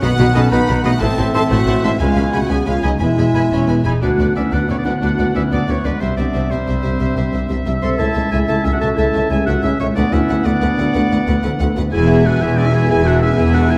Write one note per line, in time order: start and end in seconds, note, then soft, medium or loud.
0.01 0.09 B1 medium
0.01 0.09 B2 medium
0.01 0.49 D#3 medium
0.01 0.33 B3 medium
0.01 0.49 B3 medium
0.01 0.08 D#4 medium
0.01 0.08 F#4 medium
0.01 0.33 F#4 loud
0.01 0.32 F#5 medium
0.01 0.48 F#5 medium
0.01 0.09 F#5 medium
0.01 0.09 B5 medium
0.19 0.26 B1 medium
0.19 0.26 B2 medium
0.19 0.26 D#4 medium
0.19 0.26 F#4 medium
0.19 0.26 F#5 medium
0.19 0.25 B5 medium
0.35 0.41 B1 medium
0.35 0.42 B2 medium
0.35 0.50 C#4 medium
0.35 0.42 D#4 medium
0.35 0.42 F#4 medium
0.35 0.51 A4 medium
0.35 0.41 D#5 medium
0.35 0.42 F#5 medium
0.35 0.51 A5 medium
0.35 0.42 B5 medium
0.35 0.43 B5 medium
0.51 0.58 B1 medium
0.51 0.58 B2 medium
0.51 1.00 D#3 medium
0.51 1.01 B3 medium
0.51 0.83 D#4 medium
0.51 0.59 D#4 medium
0.51 0.58 F#4 medium
0.51 0.84 B4 medium
0.51 1.00 F#5 medium
0.51 0.59 F#5 medium
0.51 0.83 B5 medium
0.51 0.58 B5 medium
0.67 0.74 B1 medium
0.67 0.75 B2 medium
0.67 0.75 D#4 medium
0.67 0.75 F#4 medium
0.67 0.74 F#5 medium
0.67 0.74 B5 medium
0.84 0.91 B1 medium
0.84 0.91 B2 medium
0.84 1.03 A3 medium
0.84 0.92 D#4 medium
0.84 0.91 F#4 medium
0.84 0.92 F#4 medium
0.84 0.92 D#5 medium
0.84 0.91 F#5 medium
0.84 1.01 F#5 medium
0.84 0.91 B5 medium
0.84 0.92 B5 medium
1.01 1.08 A1 medium
1.01 1.08 A2 medium
1.01 2.00 E3 medium
1.01 1.34 C4 medium
1.01 2.01 C4 medium
1.01 1.08 E4 medium
1.01 1.33 A4 loud
1.01 1.08 C5 medium
1.01 2.00 E5 medium
1.01 1.33 A5 medium
1.01 1.08 A5 medium
1.01 1.08 C6 medium
1.18 1.24 A1 medium
1.18 1.24 A2 medium
1.18 1.24 E4 medium
1.18 1.24 C5 medium
1.18 1.25 A5 medium
1.18 1.24 C6 medium
1.34 1.40 A1 medium
1.34 1.41 A2 medium
1.34 1.50 C4 medium
1.34 1.41 E4 medium
1.34 1.42 A4 loud
1.34 1.40 C5 medium
1.34 1.40 E5 medium
1.34 1.50 A5 medium
1.34 1.42 A5 medium
1.34 1.42 C6 medium
1.50 1.57 A1 medium
1.50 1.57 A2 medium
1.50 1.86 A3 medium
1.50 1.57 E4 medium
1.50 1.83 F#4 medium
1.50 1.57 C5 medium
1.50 1.83 F#5 medium
1.50 1.58 A5 medium
1.50 1.58 C6 medium
1.66 1.73 A1 medium
1.66 1.73 A2 medium
1.66 1.73 E4 medium
1.66 1.74 C5 medium
1.66 1.73 A5 medium
1.66 1.74 C6 medium
1.83 1.89 A1 medium
1.83 1.90 A2 medium
1.83 2.00 G#3 medium
1.83 2.00 E4 medium
1.83 1.90 E4 medium
1.83 1.90 C5 medium
1.83 2.00 E5 medium
1.83 1.90 E5 medium
1.83 1.90 A5 medium
1.83 1.91 C6 medium
1.83 1.90 C6 medium
1.99 2.06 C#2 medium
1.99 2.49 B2 medium
1.99 2.35 G#3 medium
1.99 2.49 C#4 medium
1.99 2.07 C#4 medium
1.99 2.32 F4 medium
1.99 2.07 G#4 medium
1.99 2.33 F5 medium
1.99 2.06 G#5 medium
1.99 2.35 G#5 medium
1.99 2.06 B5 medium
2.16 2.23 C#2 medium
2.16 2.24 C#4 medium
2.16 2.24 G#4 medium
2.16 2.23 G#5 medium
2.16 2.23 B5 medium
2.33 2.39 C#2 medium
2.33 2.40 C#2 medium
2.33 2.53 A3 medium
2.33 2.40 C#4 medium
2.33 2.50 F#4 medium
2.33 2.40 G#4 medium
2.33 2.50 F#5 medium
2.33 2.40 G#5 medium
2.33 2.41 B5 medium
2.33 2.40 B5 medium
2.49 2.56 C#2 medium
2.49 3.00 B2 medium
2.49 2.66 B3 medium
2.49 2.75 C#4 medium
2.49 2.57 C#4 medium
2.49 2.67 G#4 medium
2.49 2.57 G#4 medium
2.49 2.99 G#5 medium
2.49 2.67 G#5 medium
2.49 2.57 G#5 medium
2.49 2.57 B5 medium
2.66 2.73 C#2 medium
2.66 2.74 C#2 medium
2.66 2.74 G#3 medium
2.66 2.73 C#4 medium
2.66 2.83 F4 medium
2.66 2.73 G#4 soft
2.66 2.84 F5 medium
2.66 2.73 G#5 medium
2.66 2.73 B5 medium
2.76 3.00 C#4 medium
2.82 2.90 C#2 medium
2.82 2.91 C#2 medium
2.82 2.92 F#3 medium
2.82 2.91 C#4 medium
2.82 3.01 D#4 medium
2.82 2.91 G#4 soft
2.82 2.91 D#5 medium
2.82 2.89 G#5 medium
2.82 2.90 B5 medium
2.82 2.91 B5 medium
2.99 3.06 E1 medium
2.99 3.07 E2 medium
2.99 3.84 B2 medium
2.99 3.84 G#3 medium
2.99 3.08 B3 medium
2.99 3.86 E4 medium
2.99 3.84 E4 medium
2.99 3.08 G#4 medium
2.99 3.84 E5 medium
2.99 3.06 G#5 medium
2.99 3.83 G#5 medium
2.99 3.07 B5 medium
3.16 3.23 E1 medium
3.16 3.24 E2 medium
3.16 3.24 B3 soft
3.16 3.24 G#4 soft
3.16 3.25 G#5 soft
3.16 3.25 B5 soft
3.34 3.41 E1 medium
3.34 3.41 E2 medium
3.34 3.42 B3 medium
3.34 3.42 G#4 medium
3.34 3.40 G#5 medium
3.34 3.42 G#5 soft
3.34 3.42 B5 medium
3.34 3.41 B5 soft
3.51 3.58 E1 medium
3.51 3.58 E2 medium
3.51 3.67 C#4 medium
3.51 3.59 G#5 medium
3.51 3.59 B5 medium
3.68 3.75 E1 medium
3.68 3.75 E2 medium
3.68 3.86 B3 medium
3.68 3.75 G#5 soft
3.68 3.75 B5 soft
3.84 3.92 E1 medium
3.84 3.92 E2 medium
3.84 4.01 D#4 medium
3.84 3.93 E4 medium
3.84 4.01 G#4 medium
3.84 3.91 G#5 medium
3.84 3.93 G#5 medium
3.84 3.91 B5 soft
3.84 3.93 B5 medium
4.00 4.09 D2 medium
4.00 4.10 D2 medium
4.00 5.96 A2 medium
4.00 5.96 B3 medium
4.00 4.08 D4 medium
4.00 4.34 D4 medium
4.00 4.35 F#4 medium
4.00 4.09 B4 soft
4.00 4.09 D5 medium
4.00 5.97 F#5 medium
4.00 4.35 F#5 medium
4.18 4.25 D2 medium
4.18 4.26 D2 medium
4.18 4.25 D4 soft
4.18 4.26 B4 soft
4.18 4.26 D5 soft
4.35 4.43 D2 medium
4.35 4.54 C#4 medium
4.35 4.42 D4 soft
4.35 4.52 E4 medium
4.35 4.43 B4 soft
4.35 4.42 D5 soft
4.35 4.55 E5 medium
4.52 4.59 D2 medium
4.52 4.58 D4 soft
4.52 4.69 D4 medium
4.52 4.69 F#4 medium
4.52 4.60 B4 medium
4.52 4.59 D5 soft
4.52 4.69 F#5 medium
4.68 4.76 D2 medium
4.68 4.79 A3 medium
4.68 4.73 C#4 medium
4.68 4.75 D4 soft
4.68 4.77 B4 soft
4.68 4.78 C#5 medium
4.68 4.75 D5 soft
4.77 4.87 B3 soft
4.77 4.86 D4 medium
4.77 4.85 D5 soft
4.85 4.92 D2 medium
4.85 4.91 D4 soft
4.85 5.00 D4 medium
4.85 5.03 F#4 medium
4.85 4.93 B4 soft
4.85 4.92 D5 soft
4.85 4.93 F#5 medium
5.01 5.08 D2 medium
5.01 5.09 D2 medium
5.01 5.33 D4 medium
5.01 5.08 D4 soft
5.01 5.35 F#4 medium
5.01 5.10 B4 soft
5.01 5.08 D5 medium
5.01 5.35 F#5 medium
5.17 5.25 D2 medium
5.17 5.26 D2 medium
5.17 5.24 D4 soft
5.17 5.26 B4 soft
5.17 5.25 D5 soft
5.34 5.41 D2 medium
5.34 5.42 D2 medium
5.34 5.50 C#4 medium
5.34 5.41 D4 soft
5.34 5.52 E4 medium
5.34 5.43 B4 soft
5.34 5.42 D5 soft
5.34 5.43 E5 medium
5.51 5.58 D2 medium
5.51 5.59 D2 medium
5.51 5.66 B3 medium
5.51 5.58 D4 soft
5.51 5.68 D4 medium
5.51 5.59 B4 medium
5.51 5.58 D5 medium
5.51 5.72 D5 medium
5.67 5.74 D2 medium
5.67 5.75 D2 medium
5.67 5.86 A3 medium
5.67 5.77 C#4 medium
5.67 5.74 D4 soft
5.67 5.75 B4 soft
5.67 5.87 C#5 medium
5.67 5.75 D5 soft
5.83 5.91 D2 soft
5.83 5.92 D2 medium
5.83 6.02 G#3 medium
5.83 5.93 B3 medium
5.83 5.91 D4 soft
5.83 5.90 B4 soft
5.83 6.02 B4 medium
5.83 5.91 D5 soft
6.00 6.07 C2 medium
6.00 6.08 C2 medium
6.00 7.95 G2 medium
6.00 7.95 C3 medium
6.00 6.07 G3 medium
6.00 6.17 G3 medium
6.00 6.09 C4 medium
6.00 6.07 C5 soft
6.00 6.16 C5 medium
6.00 9.92 E5 medium
6.00 6.08 E5 medium
6.16 6.24 C2 medium
6.16 6.25 C2 soft
6.16 6.24 G3 soft
6.16 6.53 B3 medium
6.16 6.51 D4 medium
6.16 6.23 C5 soft
6.16 6.52 D5 medium
6.16 6.25 E5 soft
6.33 6.40 C2 medium
6.33 6.41 C2 medium
6.33 6.40 G3 medium
6.33 6.41 C5 soft
6.33 6.41 E5 soft
6.49 6.57 C2 medium
6.49 6.56 G3 soft
6.49 7.66 G3 medium
6.49 7.64 C4 medium
6.49 7.66 C5 medium
6.49 6.58 C5 soft
6.49 6.58 E5 soft
6.66 6.73 C2 medium
6.66 6.74 C2 medium
6.66 6.73 G3 soft
6.66 6.73 C5 soft
6.66 6.74 E5 soft
6.82 6.90 C2 medium
6.82 6.91 C2 medium
6.82 6.89 G3 soft
6.82 6.89 C5 medium
6.82 6.90 E5 soft
6.98 7.07 C2 medium
6.98 7.05 G3 medium
6.98 7.05 C5 medium
6.98 7.07 E5 medium
7.16 7.23 C2 medium
7.16 7.22 G3 soft
7.16 7.23 C5 soft
7.16 7.24 E5 soft
7.33 7.39 C2 medium
7.33 7.40 C2 medium
7.33 7.39 G3 soft
7.33 7.39 C5 soft
7.33 7.40 E5 soft
7.49 7.56 C2 medium
7.49 7.56 G3 soft
7.49 7.57 C5 soft
7.49 7.57 E5 medium
7.65 7.73 C2 medium
7.65 7.72 G3 soft
7.65 7.73 C5 soft
7.65 7.73 E5 soft
7.81 7.89 C2 medium
7.81 7.90 C2 medium
7.81 7.89 G3 soft
7.81 8.01 A4 medium
7.81 7.88 C5 soft
7.81 7.98 C5 medium
7.81 7.89 E5 soft
7.81 7.90 C6 medium
7.99 8.06 C#2 medium
7.99 11.89 A2 medium
7.99 8.06 A3 medium
7.99 9.97 C#4 medium
7.99 8.32 E4 medium
7.99 8.32 A4 medium
7.99 8.05 E5 soft
7.99 8.06 E5 medium
7.99 8.31 A5 medium
8.14 8.22 C#2 medium
8.14 8.23 C#2 medium
8.14 8.22 A3 soft
8.14 8.21 E5 medium
8.14 8.22 E5 soft
8.31 8.38 C#2 medium
8.31 8.39 C#2 medium
8.31 8.39 A3 soft
8.31 8.48 E4 medium
8.31 8.48 G#4 medium
8.31 8.38 E5 medium
8.31 8.39 E5 medium
8.31 8.39 G#5 medium
8.48 8.55 C#2 medium
8.48 8.56 C#2 medium
8.48 8.55 A3 soft
8.48 8.63 E4 medium
8.48 8.55 A4 medium
8.48 8.55 E5 soft
8.48 8.55 E5 medium
8.48 8.66 A5 medium
8.63 8.72 C#2 medium
8.63 8.71 A3 soft
8.63 8.67 C#4 medium
8.63 8.68 E4 medium
8.63 8.72 E5 medium
8.63 8.71 E5 medium
8.63 8.73 E5 medium
8.72 8.81 D4 medium
8.72 8.77 F#4 medium
8.72 8.81 F#5 medium
8.80 8.88 C#2 medium
8.80 8.89 C#2 medium
8.80 8.87 A3 medium
8.80 8.98 F#4 medium
8.80 8.96 A4 medium
8.80 8.88 E5 medium
8.80 8.88 E5 soft
8.80 8.89 A5 medium
8.96 9.05 C#2 medium
8.96 9.05 A3 medium
8.96 9.29 E4 medium
8.96 9.30 A4 medium
8.96 9.04 E5 soft
8.96 9.05 E5 medium
8.96 9.30 A5 medium
9.14 9.21 C#2 medium
9.14 9.22 C#2 medium
9.14 9.20 A3 soft
9.14 9.20 E5 soft
9.14 9.22 E5 soft
9.29 9.37 C#2 medium
9.29 9.38 C#2 medium
9.29 9.37 A3 medium
9.29 9.37 E4 medium
9.29 9.47 G#4 medium
9.29 9.37 E5 medium
9.29 9.38 E5 soft
9.29 9.46 G#5 medium
9.46 9.54 C#2 medium
9.46 9.54 A3 medium
9.46 9.53 D4 medium
9.46 9.64 F#4 medium
9.46 9.54 E5 medium
9.46 9.55 E5 medium
9.46 9.62 F#5 medium
9.62 9.70 C#2 medium
9.62 9.71 C#2 medium
9.62 9.70 A3 medium
9.62 9.79 C#4 medium
9.62 9.71 E4 medium
9.62 9.69 E5 medium
9.62 9.79 E5 medium
9.62 9.72 E5 medium
9.79 9.87 C#2 medium
9.79 9.99 A3 medium
9.79 9.87 A3 medium
9.79 9.88 C#4 medium
9.79 9.87 C#5 medium
9.79 9.86 E5 soft
9.79 9.87 E5 medium
9.95 10.03 D2 medium
9.95 10.04 D2 medium
9.95 10.03 A3 medium
9.95 11.88 B3 medium
9.95 10.14 B3 medium
9.95 10.12 D4 medium
9.95 10.03 B4 medium
9.95 10.15 D5 medium
9.95 10.03 F#5 medium
9.95 11.76 F#5 medium
10.12 10.19 D2 medium
10.12 10.20 D2 medium
10.12 10.19 A3 medium
10.12 10.47 C#4 medium
10.12 10.44 E4 medium
10.12 10.18 B4 medium
10.12 10.47 E5 medium
10.12 10.19 F#5 medium
10.28 10.35 D2 medium
10.28 10.36 D2 medium
10.28 10.36 A3 medium
10.28 10.36 B4 medium
10.28 10.36 F#5 medium
10.44 10.52 D2 medium
10.44 10.53 D2 medium
10.44 10.51 A3 medium
10.44 11.60 B3 medium
10.44 11.58 D4 medium
10.44 10.51 B4 medium
10.44 11.60 D5 medium
10.44 10.51 F#5 medium
10.61 10.68 D2 medium
10.61 10.69 D2 medium
10.61 10.68 A3 soft
10.61 10.68 B4 medium
10.61 10.68 F#5 medium
10.77 10.85 D2 medium
10.77 10.85 A3 medium
10.77 10.84 B4 medium
10.77 10.85 F#5 medium
10.94 11.01 D2 medium
10.94 11.01 A3 medium
10.94 11.01 B4 medium
10.94 11.01 F#5 medium
11.10 11.17 D2 medium
11.10 11.18 D2 medium
11.10 11.17 A3 medium
11.10 11.18 B4 medium
11.10 11.18 F#5 medium
11.27 11.34 D2 medium
11.27 11.34 A3 medium
11.27 11.35 B4 medium
11.27 11.34 F#5 medium
11.43 11.50 D2 medium
11.43 11.50 A3 medium
11.43 11.50 B4 medium
11.43 11.50 F#5 medium
11.59 11.66 D2 medium
11.59 11.67 D2 medium
11.59 11.67 A3 medium
11.59 11.67 B4 medium
11.59 11.66 F#5 medium
11.76 11.83 D2 medium
11.76 11.83 A3 medium
11.76 11.83 B4 medium
11.76 11.83 F#5 medium
11.91 12.36 E1 medium
11.91 12.36 E2 medium
11.91 13.78 B2 medium
11.91 12.07 G#3 medium
11.91 13.78 B3 medium
11.91 12.28 E4 medium
11.91 12.23 G#4 loud
11.91 12.08 B4 medium
11.91 13.78 E5 medium
11.91 12.07 G#5 medium
11.91 12.28 G#5 medium
12.08 12.25 E3 medium
12.08 12.26 G#4 medium
12.08 12.25 E5 medium
12.24 12.41 G#3 medium
12.24 12.40 D4 medium
12.24 12.41 F#4 medium
12.24 12.41 B4 medium
12.24 12.44 F#5 medium
12.24 12.41 G#5 medium
12.40 12.84 E1 medium
12.40 12.84 E2 medium
12.40 12.57 E3 medium
12.40 12.57 E4 medium
12.40 12.48 G#4 loud
12.40 12.58 G#4 medium
12.40 12.57 E5 medium
12.40 12.59 G#5 medium
12.56 12.73 G#3 medium
12.56 12.61 B3 medium
12.56 12.65 D4 medium
12.56 12.72 B4 medium
12.56 12.68 D5 medium
12.56 12.72 G#5 medium
12.65 12.69 C#4 medium
12.65 12.73 E4 medium
12.65 12.74 E5 medium
12.72 12.90 E3 medium
12.72 12.89 E4 medium
12.72 12.87 G#4 medium
12.72 12.90 G#4 medium
12.72 12.90 E5 medium
12.72 12.90 G#5 medium
12.88 13.33 E1 medium
12.88 13.33 E2 medium
12.88 13.06 G#3 medium
12.88 13.04 E4 medium
12.88 13.05 G#4 loud
12.88 13.07 B4 medium
12.88 13.07 G#5 medium
12.88 13.09 G#5 medium
13.04 13.22 E3 medium
13.04 13.24 D4 medium
13.04 13.21 F#4 medium
13.04 13.22 G#4 medium
13.04 13.23 E5 medium
13.04 13.22 F#5 medium
13.21 13.38 G#3 medium
13.21 13.39 C#4 medium
13.21 13.28 E4 loud
13.21 13.38 B4 medium
13.21 13.30 E5 medium
13.21 13.38 G#5 medium
13.37 13.78 E1 medium
13.37 13.78 E2 medium
13.37 13.55 E3 medium
13.37 13.56 E4 medium
13.37 13.54 G#4 loud
13.37 13.56 G#4 medium
13.37 13.55 E5 medium
13.37 13.54 G#5 medium
13.54 13.71 G#3 medium
13.54 13.73 D4 medium
13.54 13.71 F#4 loud
13.54 13.72 B4 medium
13.54 13.72 F#5 medium
13.54 13.72 G#5 medium
13.70 13.78 E3 medium
13.70 13.78 E4 medium
13.70 13.78 G#4 medium
13.70 13.78 E5 medium
13.70 13.78 G#5 medium